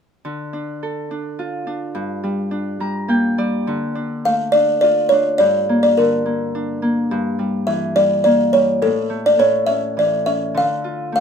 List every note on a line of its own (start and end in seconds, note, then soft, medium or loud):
0.25 2.01 D3 medium
0.53 1.10 D4 soft
0.83 2.87 A4 soft
1.11 1.66 D4 soft
1.39 3.91 F4 medium
1.67 2.51 D4 soft
1.95 3.72 G2 medium
2.24 2.79 G3 medium
2.51 3.95 D4 medium
2.80 3.37 G3 soft
2.80 4.21 A#5 medium
3.08 4.31 A#3 medium
3.08 4.64 G5 medium
3.38 3.72 G3 medium
3.38 5.23 D5 medium
3.67 5.44 D3 medium
3.95 4.54 D4 soft
4.25 5.75 A3 soft
4.25 4.52 F5 medium
4.52 5.11 D4 soft
4.52 4.80 D5 medium
4.81 7.35 F4 soft
4.81 5.11 D5 medium
5.09 6.54 D4 soft
5.09 5.22 C#5 medium
5.38 7.10 G2 medium
5.38 5.78 D5 medium
5.69 6.25 A#3 medium
5.83 5.97 D5 medium
5.97 7.14 D3 soft
5.97 6.77 A#4 medium
6.26 6.82 A#3 soft
6.55 9.35 D4 medium
6.82 8.25 A#3 medium
7.11 8.85 G2 medium
7.39 7.94 G3 soft
7.67 8.85 E3 soft
7.67 7.96 E5 medium
7.95 8.52 G3 soft
7.95 8.23 D5 medium
8.24 8.88 A#3 medium
8.24 8.53 D5 medium
8.53 8.85 G3 soft
8.53 8.82 C#5 medium
8.82 9.38 A2 medium
8.82 9.26 A4 medium
9.10 11.12 A3 soft
9.26 9.32 D5 medium
9.39 10.59 A2 medium
9.39 9.66 C#5 medium
9.67 10.26 C#4 soft
9.67 9.80 E5 medium
9.97 10.59 E3 soft
9.97 10.27 D5 medium
10.26 10.60 C#4 soft
10.26 10.56 E5 medium
10.54 11.20 D3 medium
10.54 11.09 F5 medium
10.84 11.20 F4 soft
11.12 11.20 A3 soft
11.12 11.20 F5 medium